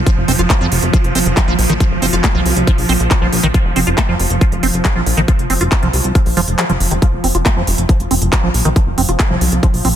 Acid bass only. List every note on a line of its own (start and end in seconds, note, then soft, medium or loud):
0.06 0.10 F3 medium
0.28 0.32 C4 medium
0.39 0.41 F4 medium
0.50 0.54 A3 loud
0.61 0.67 F3 medium
0.93 0.97 F3 medium
1.15 1.19 C4 medium
1.37 1.41 F#3 medium
1.48 1.54 F3 medium
1.70 1.73 D#3 medium
1.80 1.84 F3 medium
2.02 2.06 C4 medium
2.13 2.15 F4 medium
2.24 2.28 A3 loud
2.35 2.40 F3 medium
2.67 2.71 F3 medium
2.89 2.93 C4 medium
3.11 3.15 F#3 medium
3.22 3.27 F3 medium
3.43 3.47 D#3 loud
3.54 3.58 F3 medium
3.76 3.80 C4 medium
3.87 3.89 F4 medium
3.98 4.02 A3 loud
4.09 4.14 F3 medium
4.41 4.45 F3 medium
4.63 4.67 C4 medium
4.85 4.89 F#3 medium
4.96 5.01 F3 medium
5.17 5.21 D#3 loud
5.28 5.32 F3 medium
5.50 5.54 C4 medium
5.61 5.63 F4 medium
5.72 5.76 A3 loud
5.83 5.88 F3 medium
6.15 6.19 F3 medium
6.37 6.41 F3 loud
6.59 6.64 F3 medium
6.70 6.72 F3 loud
6.91 6.94 D#3 medium
7.02 7.06 F3 medium
7.24 7.28 C4 medium
7.35 7.37 F4 medium
7.46 7.49 A3 loud
7.56 7.62 F3 medium
7.89 7.93 F3 medium
8.11 8.15 C4 medium
8.33 8.36 F#3 medium
8.43 8.49 F3 medium
8.65 8.69 D#3 loud
8.76 8.80 F3 medium
8.98 9.02 C4 medium
9.09 9.11 F4 medium
9.20 9.23 A3 loud
9.30 9.36 F3 medium
9.63 9.67 F3 medium
9.85 9.89 C4 medium